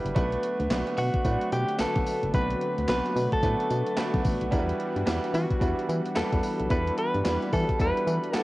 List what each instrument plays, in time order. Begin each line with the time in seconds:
Already playing: grand piano G3 D4 E4 F#4 B4
0.05 fm bass F#1, closed hi-hat
0.14 fm bass B1, analog synth pad D3 F#3 A3 B3 F#4, grand piano A3 B3 D4 F#4 B4, kick, closed hi-hat, tambourine
0.32 closed hi-hat
0.43 closed hi-hat
0.60 fm bass D2, closed hi-hat
0.70 fm bass B1, grand piano A3 B3 D4 F#4 B4, snare, clap, closed hi-hat, tambourine
0.87 closed hi-hat
0.97 fm bass B2, clean electric guitar F#4, open hi-hat, tambourine
1.14 kick, closed hi-hat
1.24 fm bass A2, grand piano A3 B3 C4 F#4 B4, kick, closed hi-hat, tambourine
1.31 grand piano D4
1.41 closed hi-hat
1.52 fm bass B2, clean electric guitar G4, closed hi-hat, tambourine
1.69 closed hi-hat
1.79 fm bass B1, grand piano A3 B3 D4 F#4 B4, clean electric guitar A4, snare, clap, closed hi-hat, tambourine
1.96 fm bass B1, kick, closed hi-hat
2.06 open hi-hat, tambourine
2.23 fm bass F#1, closed hi-hat
2.33 fm bass B1, grand piano A3 B3 C4 F#4 B4, clean electric guitar B4, kick, closed hi-hat, tambourine
2.40 grand piano D4
2.50 closed hi-hat
2.61 closed hi-hat
2.78 fm bass D2, closed hi-hat
2.88 fm bass B1, grand piano A3 B3 D4 F#4 B4, clean electric guitar B4, snare, clap, closed hi-hat, tambourine
3.06 closed hi-hat
3.16 fm bass B2, open hi-hat, tambourine
3.32 clean electric guitar A4, kick, closed hi-hat
3.43 fm bass A2, grand piano A3 B3 D4 F#4 B4, kick, closed hi-hat, tambourine
3.60 closed hi-hat
3.70 fm bass B2, closed hi-hat, tambourine
3.87 closed hi-hat
3.96 grand piano A3 B3 D4 F#4 B4, snare, clap, closed hi-hat, tambourine
4.14 fm bass B1, kick, closed hi-hat
4.25 fm bass A1, kick, open hi-hat, tambourine
4.41 fm bass B1, closed hi-hat
4.51 fm bass E2, analog synth pad E3 G3 B3 D4, grand piano G3 D4 E4 F#4 A#4, kick, closed hi-hat, tambourine
4.59 grand piano B4
4.69 closed hi-hat
4.80 closed hi-hat
4.96 fm bass G2, closed hi-hat
5.06 fm bass E2, grand piano G3 D4 E4 F#4 B4, snare, clap, closed hi-hat, tambourine
5.24 closed hi-hat
5.34 fm bass E3, clean electric guitar F#4, open hi-hat, tambourine
5.51 kick, closed hi-hat
5.60 fm bass E2, grand piano G3 D4 E4 F#4 B4, kick, closed hi-hat, tambourine
5.79 closed hi-hat
5.89 fm bass E3, closed hi-hat, tambourine
6.06 closed hi-hat
6.15 fm bass E2, grand piano G3 D4 E4 F#4 B4, clean electric guitar A4, snare, clap, closed hi-hat, tambourine
6.33 fm bass E2, kick, closed hi-hat
6.43 open hi-hat, tambourine
6.60 fm bass B1, closed hi-hat
6.69 fm bass E2, grand piano G3 D4 E4 F#4 A4, clean electric guitar B4, kick, closed hi-hat, tambourine
6.87 closed hi-hat
6.98 clean electric guitar B4, closed hi-hat
7.15 fm bass G2, closed hi-hat
7.24 fm bass E2, grand piano G3 D4 E4 F#4 B4, snare, clap, closed hi-hat, tambourine
7.42 closed hi-hat
7.53 fm bass E3, clean electric guitar A4, kick, open hi-hat, tambourine
7.69 kick, closed hi-hat
7.79 fm bass E2, grand piano G3 D4 E4 F#4 A4, clean electric guitar B4, kick, closed hi-hat, tambourine
7.87 grand piano B4
7.97 closed hi-hat
8.07 fm bass E3, closed hi-hat, tambourine
8.24 closed hi-hat
8.33 grand piano G3 D4 E4 F#4 A4, snare, clap, closed hi-hat, tambourine
8.38 clean electric guitar A4